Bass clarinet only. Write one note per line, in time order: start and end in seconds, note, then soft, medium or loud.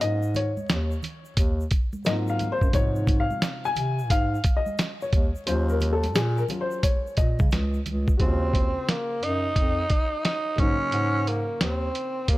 0.01 0.58 G#2 loud
0.69 0.98 D#2 medium
1.37 1.66 D#2 medium
2.06 2.52 G#2 medium
2.62 2.75 F#2 medium
2.74 3.30 G#2 loud
3.76 4.12 C3 medium
4.10 4.39 G#2 loud
5.13 5.31 D#2 medium
5.47 6.17 D#2 loud
6.16 6.44 A#2 loud
7.18 7.36 A#2 medium
7.40 7.50 C#3 medium
7.52 7.80 C#2 medium
7.86 8.14 C#2 medium
8.20 8.76 D#2 medium
9.22 9.50 F#2 medium
9.56 9.84 F2 medium
10.58 10.77 G#2 medium
10.92 11.49 G#2 loud
11.61 11.89 D#2 medium
12.29 12.38 D#2 medium